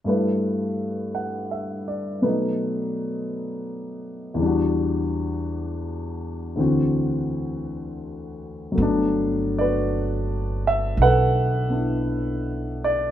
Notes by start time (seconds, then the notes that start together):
0.04 G2 G3 A3 E4
0.09 B4
1.15 F#5
1.51 E5
1.88 D5
2.22 B2 F#3 A3 D#4 B4
4.34 E2 E3
4.39 G3 D4
4.45 F#4
6.56 D2 D3 E3 C4
6.60 F#4
8.72 F#3 A3
8.78 G1 B3
8.82 D4
9.58 F#4 B4 D5
10.67 E5
10.97 B1
11.02 A4 B4 F#5
11.70 B3 D4 E4
12.84 D5